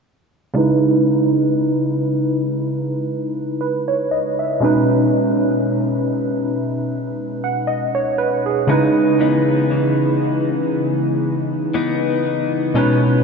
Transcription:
0.54 synth keys C#3 G#3 D#4 E4
0.58 synth keys B4
3.61 synth keys B4
3.88 synth keys C#5
4.11 synth keys D#5
4.39 synth keys E5
4.60 synth keys B2 G#3 C#4 D#4
4.64 synth keys B4
7.44 synth keys F#5
7.67 synth keys D#5
7.95 synth keys C#5
8.18 synth keys B4
8.46 synth keys G#4
8.67 synth keys C#3 G#3 D#4 E4, clean electric guitar C#3 D#4
8.71 synth keys B4
9.20 clean electric guitar E3 B3 D#4
9.71 clean electric guitar E3
11.74 clean electric guitar E3 B3 D#4
12.74 synth keys B2 G#3 C#4 D#4, clean electric guitar B2 C#4
12.78 synth keys B4

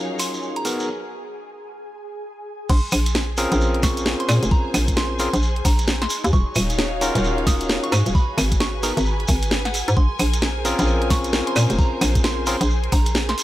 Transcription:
Already playing: string section F#3 D#4 C#5 F5, tine electric piano C#4 D#4 F4 F#4 A#4, ambient pad G#4 G#5
0.19 synth bell C6, open hi-hat, shekere
0.34 shekere
0.42 shekere
0.56 synth bell A#5, closed hi-hat
0.65 string section B3, tine electric piano B3 D#4 F#4 G#4 A#4, open hi-hat, shekere
0.78 string section G#4, shekere
0.83 string section A#4
2.69 fm bass A#1, ambient pad G#4 G#5, synth bell C6, kick, crash, shekere
2.92 fm bass A#1, open hi-hat, claves, shekere
3.06 closed hi-hat, shekere
3.14 string section C5, snare, shekere
3.21 string section G#5
3.37 tine electric piano C4 C#4 F4 G#4 A#4, open hi-hat, shekere
3.52 fm bass A#1, closed hi-hat, shekere
3.61 shekere
3.74 closed hi-hat
3.83 synth bell C#6, kick, snare, open hi-hat, shekere
3.97 closed hi-hat, shekere
4.06 snare, shekere
4.20 synth bell C6, closed hi-hat
4.29 fm bass A#2, snare, open hi-hat, claves, shekere
4.43 fm bass F1, closed hi-hat, shekere
4.51 synth bell A#5, kick, shekere
4.74 fm bass A#1, snare, open hi-hat, claves, shekere
4.88 kick, closed hi-hat, shekere
4.96 synth bell C6, snare, shekere
5.19 tine electric piano C4 C#4 F4 G#4 A#4, synth bell C6, open hi-hat, shekere
5.33 fm bass A#1, closed hi-hat, shekere
5.42 shekere
5.56 closed hi-hat
5.65 fm bass A#1, synth bell A#5, kick, open hi-hat, shekere
5.78 closed hi-hat, shekere
5.88 snare, shekere
6.02 synth bell C6, snare, closed hi-hat
6.10 string section D#4, open hi-hat, shekere
6.23 fm bass D#2, string section F#4, closed hi-hat, shekere
6.33 fm bass D#1, synth bell C#6, kick, shekere
6.37 string section C#5
6.55 fm bass D#1, string section F5, open hi-hat, claves, shekere
6.70 closed hi-hat, shekere
6.79 snare, shekere
7.01 tine electric piano C#4 D#4 F4 F#4 A#4, open hi-hat, shekere
7.15 fm bass D#1, closed hi-hat, shekere
7.24 shekere
7.38 closed hi-hat
7.47 synth bell D#6, kick, snare, open hi-hat, shekere
7.60 closed hi-hat, shekere
7.69 snare, shekere
7.83 synth bell C#6, closed hi-hat
7.92 fm bass G#2, snare, open hi-hat, claves, shekere
8.02 string section B4 G#5, shekere
8.06 fm bass D#1, closed hi-hat
8.15 synth bell B5, kick, shekere
8.38 fm bass G#1, snare, open hi-hat, claves, shekere
8.51 kick, closed hi-hat, shekere
8.60 synth bell C#6, snare, shekere
8.83 tine electric piano B3 D#4 F#4 G#4 A#4, synth bell A#5, open hi-hat, shekere
8.97 fm bass G#1, closed hi-hat, shekere
9.06 shekere
9.20 closed hi-hat
9.28 fm bass G#1, synth bell G#5, kick, open hi-hat, shekere
9.42 closed hi-hat, shekere
9.51 snare, shekere
9.65 synth bell F#5, snare, closed hi-hat
9.74 open hi-hat, shekere
9.88 fm bass G#2, closed hi-hat, shekere
9.96 fm bass A#1, synth bell C6, kick, shekere
10.08 string section A#4
10.19 fm bass A#1, open hi-hat, claves, shekere
10.33 closed hi-hat, shekere
10.42 string section C5, snare, shekere
10.65 tine electric piano C4 C#4 F4 G#4 A#4, open hi-hat, shekere
10.79 fm bass A#1, closed hi-hat, shekere
10.87 shekere
11.02 closed hi-hat
11.10 synth bell C#6, kick, snare, open hi-hat, shekere
11.24 closed hi-hat, shekere
11.33 snare, shekere
11.47 synth bell C6, closed hi-hat
11.56 fm bass A#2, snare, open hi-hat, claves, shekere
11.70 fm bass F1, closed hi-hat, shekere
11.79 synth bell A#5, kick, shekere
12.01 fm bass A#1, snare, open hi-hat, claves, shekere
12.15 kick, closed hi-hat, shekere
12.24 synth bell C6, snare, shekere
12.46 tine electric piano C4 C#4 F4 G#4 A#4, synth bell C6, open hi-hat, shekere
12.61 fm bass A#1, closed hi-hat, shekere
12.70 shekere
12.84 closed hi-hat
12.92 fm bass A#1, synth bell A#5, kick, open hi-hat, shekere
13.06 closed hi-hat, shekere
13.15 snare, shekere
13.29 synth bell C6, snare, closed hi-hat
13.38 string section D#4, open hi-hat, shekere

